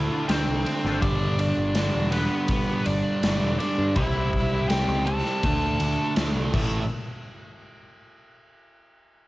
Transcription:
Already playing: distorted electric guitar D3 A3 D4, lead electric guitar E4 E5
0.12 clean electric guitar D3 A3 D4 F4
0.28 picked electric bass D2, distorted electric guitar D3 A3 D4, lead electric guitar C4 C5, snare, ride
0.48 picked electric bass C2, muted clean electric guitar stroke
0.64 distorted electric guitar D3 A3 D4, ride
0.85 picked electric bass G#1, clean electric guitar D3 A3 D4 F4, snare
1.01 picked electric bass G1, distorted electric guitar G2 D3 G3, lead electric guitar D4 D5, kick, ride
1.39 lead electric guitar D4 D5, ride
1.58 picked electric bass G1
1.75 distorted electric guitar G2 D3 G3, snare, ride
1.95 picked electric bass E1
2.11 distorted electric guitar G2 D3 G3, lead electric guitar B3 B4, ride
2.48 distorted electric guitar G2 D3 G3, kick, ride
2.86 picked electric bass G1, lead electric guitar D4 D5, ride
3.23 picked electric bass G1, distorted electric guitar G2 D3 G3, snare, ride
3.42 picked electric bass E1
3.59 distorted electric guitar G2 D3 G3, lead electric guitar D4 D5, ride
3.78 picked electric bass G2
3.95 picked electric bass C2, distorted electric guitar C3 G3 C4, lead electric guitar E4 E5, kick, ride
4.33 kick, ride
4.52 picked electric bass C2
4.68 distorted electric guitar C3 G3 C4, lead electric guitar G4 G5, snare, ride
4.88 picked electric bass C#2
5.05 distorted electric guitar C3 G3 C4, lead electric guitar A4 A5, ride
5.26 snare
5.43 picked electric bass D2, distorted electric guitar D3 A3 D4, kick, ride
5.80 picked electric bass D2, ride
6.17 picked electric bass D2, distorted electric guitar D3 A3 D4, snare, ride
6.36 picked electric bass C2
6.53 picked electric bass A1, distorted electric guitar A2 E3 A3, kick, crash

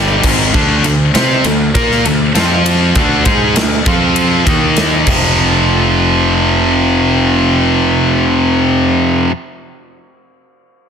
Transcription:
Already playing: picked electric bass G1, distorted electric guitar G2 D3 G3
0.23 picked electric bass G#1, distorted electric guitar G#2 D#3 G#3, kick, crash
0.54 picked electric bass D2, distorted electric guitar D3 A3 D4, kick
0.84 picked electric bass D2, distorted electric guitar D3 A3, ride
1.14 picked electric bass C3, distorted electric guitar C4 G4 C5, snare, ride
1.44 picked electric bass D2, distorted electric guitar D3 A3, ride
1.74 picked electric bass A#2, distorted electric guitar A#3 F4 A#4, kick, ride
1.91 snare
2.05 picked electric bass D2, distorted electric guitar D3 A3, ride
2.35 picked electric bass F2, distorted electric guitar F3 C4 F4, snare, ride
2.66 ride
2.95 picked electric bass D2, distorted electric guitar D3 A3 D4, kick, ride
3.25 picked electric bass G#2, distorted electric guitar G#3 D#4 G#4, kick, ride
3.56 picked electric bass D2, distorted electric guitar D3 A3, snare, ride
3.85 picked electric bass F2, distorted electric guitar F3 C4 F4, kick, ride
4.16 ride
4.46 picked electric bass D#2, distorted electric guitar D#3 A#3 D#4, kick, ride
4.76 snare, ride
5.07 picked electric bass F1, distorted electric guitar F2 C3 F3, kick, crash

